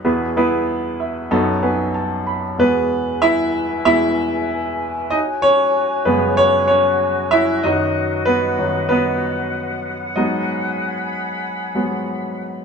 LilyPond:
<<
  \new Staff \with { instrumentName = "Flute section" } { \time 4/4 \key e \major \tempo 4 = 95 << { r1 | gis''1~ | gis''1 | fis''1 |
b''1 | } \\ { r1 | <e' b'>1 | <fis' cis''>1 | <b' dis''>1 |
gis'1 | } >> }
  \new Staff \with { instrumentName = "Grand piano" } { \time 4/4 \key e \major << { r4. e''8 fis''8 gis''8 a''8 b''8 | <b b'>4 <e' e''>4 <e' e''>2 | <dis' dis''>8 <cis' cis''>4 <b b'>8 <cis' cis''>8 <cis' cis''>4 <e' e''>8 | <dis' dis''>4 <b b'>4 <b b'>2 |
<dis' dis''>2 r2 | } \\ { <b e' gis' b'>8 <b e' gis' b'>4. <b dis' fis' a'>8 <b dis' fis' b'>4~ <b dis' fis' b'>16 r16 | r1 | r1 | r1 |
r1 | } >> }
  \new Staff \with { instrumentName = "Grand piano" } { \clef bass \time 4/4 \key e \major <e, b,>2 <b,, fis,>2 | <e, b, gis>2 <e, b, gis>8 r4. | r4. <fis, cis gis>4. r4 | <fis, dis fis>4. <fis, dis fis>8 r2 |
<gis, fis b>8 r2 <gis, fis b>8 r4 | }
>>